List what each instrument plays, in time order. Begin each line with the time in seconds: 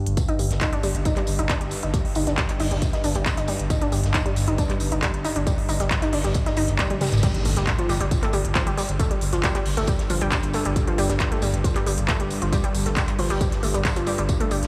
Already playing: ambient pad G2
0.06 sub bass G1, closed hi-hat
0.17 kick, closed hi-hat, tambourine
0.28 synth arpeggio sound D#4, closed hi-hat
0.39 sub bass G1, synth arpeggio sound G3, open hi-hat, tambourine
0.51 sub bass G1, snare, closed hi-hat
0.60 synth arpeggio sound D#4, kick, snare, clap, closed hi-hat, tambourine
0.73 synth arpeggio sound D4, closed hi-hat
0.83 sub bass G1, synth arpeggio sound G3, open hi-hat, tambourine
0.95 sub bass G1, closed hi-hat
1.05 synth arpeggio sound D#4, kick, closed hi-hat, tambourine
1.16 synth arpeggio sound G3, clap, closed hi-hat
1.27 sub bass G1, open hi-hat, tambourine
1.39 sub bass G1, synth arpeggio sound D#4, closed hi-hat
1.49 synth arpeggio sound D4, kick, snare, clap, closed hi-hat, tambourine
1.61 sub bass G1, synth arpeggio sound G3, closed hi-hat
1.71 open hi-hat, tambourine
1.83 sub bass G1, synth arpeggio sound D#4, closed hi-hat
1.94 synth arpeggio sound G3, kick, closed hi-hat, tambourine
2.05 open hi-hat
2.15 sub bass G1, synth arpeggio sound D#4, open hi-hat, tambourine
2.27 sub bass G1, synth arpeggio sound D4, snare, closed hi-hat
2.38 synth arpeggio sound G3, kick, snare, clap, closed hi-hat, tambourine
2.49 clap, closed hi-hat
2.60 sub bass G1, synth arpeggio sound D#4, open hi-hat
2.71 sub bass G1, synth arpeggio sound G3, closed hi-hat
2.82 kick, closed hi-hat, tambourine
2.93 synth arpeggio sound D#4, snare, closed hi-hat
3.04 sub bass G1, synth arpeggio sound D4, open hi-hat, tambourine
3.15 sub bass G1, synth arpeggio sound G3, closed hi-hat
3.26 kick, snare, clap, closed hi-hat, tambourine
3.37 sub bass G1, synth arpeggio sound D#4, closed hi-hat
3.48 synth arpeggio sound G3, open hi-hat, tambourine
3.59 sub bass G1, closed hi-hat
3.70 synth arpeggio sound D#4, kick, closed hi-hat, tambourine
3.81 synth arpeggio sound D4, closed hi-hat
3.92 sub bass G1, synth arpeggio sound G3, open hi-hat, tambourine
4.04 sub bass G1, snare, closed hi-hat
4.14 synth arpeggio sound D#4, kick, snare, clap, closed hi-hat, tambourine
4.26 synth arpeggio sound G3, closed hi-hat
4.36 sub bass G1, open hi-hat, tambourine
4.48 sub bass G1, synth arpeggio sound D#4, closed hi-hat
4.58 synth arpeggio sound D4, kick, closed hi-hat, tambourine
4.70 synth arpeggio sound G3, clap, closed hi-hat
4.80 sub bass G1, open hi-hat, tambourine
4.92 sub bass G1, synth arpeggio sound D#4, closed hi-hat
5.03 synth arpeggio sound G3, kick, snare, clap, closed hi-hat, tambourine
5.14 sub bass G1, closed hi-hat
5.25 synth arpeggio sound D#4, open hi-hat, tambourine
5.36 sub bass G1, synth arpeggio sound D4, closed hi-hat
5.47 synth arpeggio sound G3, kick, closed hi-hat, tambourine
5.58 open hi-hat
5.69 sub bass G1, synth arpeggio sound D#4, open hi-hat, tambourine
5.80 sub bass G1, synth arpeggio sound G3, snare, closed hi-hat
5.91 kick, snare, clap, closed hi-hat, tambourine
6.02 synth arpeggio sound D#4, clap, closed hi-hat
6.13 sub bass G1, synth arpeggio sound D4, open hi-hat
6.24 sub bass G1, synth arpeggio sound G3, closed hi-hat
6.34 kick, closed hi-hat, tambourine
6.46 synth arpeggio sound D#4, snare, closed hi-hat
6.57 sub bass G1, synth arpeggio sound D#4, open hi-hat, tambourine
6.68 sub bass G1, closed hi-hat
6.79 synth arpeggio sound G3, kick, clap, closed hi-hat, high tom, tambourine
6.90 sub bass G1, synth arpeggio sound G3, closed hi-hat, high tom
7.01 synth arpeggio sound G3, snare, open hi-hat, mid tom, tambourine
7.07 snare, tambourine
7.12 sub bass G1, snare, closed hi-hat, mid tom, tambourine
7.18 snare, tambourine
7.23 ambient pad G2, synth arpeggio sound G3, kick, closed hi-hat, crash, tambourine, impact
7.34 closed hi-hat
7.45 sub bass G1, synth arpeggio sound A3, open hi-hat, tambourine
7.56 sub bass G1, synth arpeggio sound G3, snare, closed hi-hat
7.67 kick, snare, clap, closed hi-hat, tambourine
7.79 synth arpeggio sound F3, closed hi-hat
7.89 sub bass G1, synth arpeggio sound G3, open hi-hat, tambourine
8.00 sub bass G1, synth arpeggio sound G3, closed hi-hat
8.11 kick, closed hi-hat, tambourine
8.22 synth arpeggio sound A3, clap, closed hi-hat
8.33 sub bass G1, synth arpeggio sound G3, open hi-hat, tambourine
8.45 sub bass G1, closed hi-hat
8.55 synth arpeggio sound F3, kick, snare, clap, closed hi-hat, tambourine
8.67 sub bass G1, synth arpeggio sound G3, closed hi-hat
8.77 synth arpeggio sound G3, open hi-hat, tambourine
8.89 sub bass G1, closed hi-hat
8.99 synth arpeggio sound A3, kick, closed hi-hat, tambourine
9.11 synth arpeggio sound G3, closed hi-hat
9.21 sub bass G1, open hi-hat, tambourine
9.33 sub bass G1, synth arpeggio sound F3, snare, closed hi-hat
9.43 synth arpeggio sound G3, kick, snare, clap, closed hi-hat, tambourine
9.55 synth arpeggio sound G3, clap, closed hi-hat
9.66 sub bass G1, open hi-hat
9.77 sub bass G1, synth arpeggio sound A3, closed hi-hat
9.87 synth arpeggio sound G3, kick, closed hi-hat, tambourine
9.99 snare, closed hi-hat
10.10 sub bass G1, synth arpeggio sound F3, open hi-hat, tambourine
10.21 sub bass G1, synth arpeggio sound G3, closed hi-hat
10.31 synth arpeggio sound G3, kick, snare, clap, closed hi-hat, tambourine
10.43 sub bass G1, closed hi-hat
10.53 synth arpeggio sound A3, open hi-hat, tambourine
10.65 sub bass G1, synth arpeggio sound G3, closed hi-hat
10.76 kick, closed hi-hat, tambourine
10.87 synth arpeggio sound F3, closed hi-hat
10.98 sub bass G1, synth arpeggio sound G3, open hi-hat, tambourine
11.09 sub bass G1, synth arpeggio sound G3, snare, closed hi-hat
11.20 kick, snare, clap, closed hi-hat, tambourine
11.32 synth arpeggio sound A3, closed hi-hat
11.42 sub bass G1, synth arpeggio sound G3, open hi-hat, tambourine
11.54 sub bass G1, closed hi-hat
11.64 synth arpeggio sound F3, kick, closed hi-hat, tambourine
11.75 synth arpeggio sound G3, clap, closed hi-hat
11.86 sub bass G1, synth arpeggio sound G3, open hi-hat, tambourine
11.98 sub bass G1, closed hi-hat
12.08 synth arpeggio sound A3, kick, snare, clap, closed hi-hat, tambourine
12.20 sub bass G1, synth arpeggio sound G3, closed hi-hat
12.31 open hi-hat, tambourine
12.42 sub bass G1, synth arpeggio sound F3, closed hi-hat
12.53 synth arpeggio sound G3, kick, closed hi-hat, tambourine
12.64 synth arpeggio sound G3, closed hi-hat
12.75 sub bass G1, open hi-hat, tambourine
12.86 sub bass G1, synth arpeggio sound A3, snare, closed hi-hat
12.96 synth arpeggio sound G3, kick, snare, clap, closed hi-hat, tambourine
13.08 clap, closed hi-hat
13.19 sub bass G1, synth arpeggio sound F3, open hi-hat
13.30 sub bass G1, synth arpeggio sound G3, closed hi-hat
13.41 synth arpeggio sound G3, kick, closed hi-hat, tambourine
13.52 snare, closed hi-hat
13.63 sub bass G1, synth arpeggio sound A3, open hi-hat, tambourine
13.74 sub bass G1, synth arpeggio sound G3, closed hi-hat
13.85 kick, snare, clap, closed hi-hat, tambourine
13.96 sub bass G1, synth arpeggio sound F3, closed hi-hat
14.06 synth arpeggio sound G3, open hi-hat, tambourine
14.18 sub bass G1, synth arpeggio sound G3, closed hi-hat
14.29 kick, closed hi-hat, tambourine
14.40 synth arpeggio sound A3, closed hi-hat
14.51 sub bass G1, synth arpeggio sound G3, open hi-hat, tambourine
14.63 sub bass G1, snare, closed hi-hat